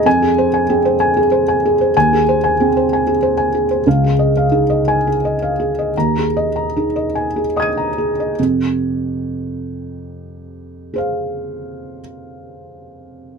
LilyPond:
<<
  \new Staff \with { instrumentName = "Felt piano" } { \time 6/8 \key f \minor \tempo 4. = 53 << { aes''8 r2 r8 | aes''8 r2 r8 | r4. aes''8 r4 | bes''8 r4. <ees''' aes''' ees''''>4 |
r2. | <aes' c'' f''>2. | } \\ { r16 aes'16 c''16 aes''16 aes'16 c''16 aes''16 aes'16 c''16 aes''16 aes'16 c''16 | r16 aes'16 c''16 aes''16 aes'16 c''16 aes''16 aes'16 c''16 aes''16 aes'16 c''16 | f''16 aes'16 ees''16 f''16 aes'16 ees''8 aes'16 ees''16 f''16 aes'16 ees''16 | r16 aes'16 ees''16 bes''16 aes'16 ees''16 aes''16 aes'16 ees''16 bes''16 aes'16 ees''16 |
r2. | r2. | } >> }
  \new Staff \with { instrumentName = "Felt piano" } { \clef bass \time 6/8 \key f \minor f,4 c'4 r4 | ees,4 c'4 r4 | des,4 ees'4 r4 | ees,4 ees'4 r4 |
<f, c>2.~ | <f, c>2. | }
>>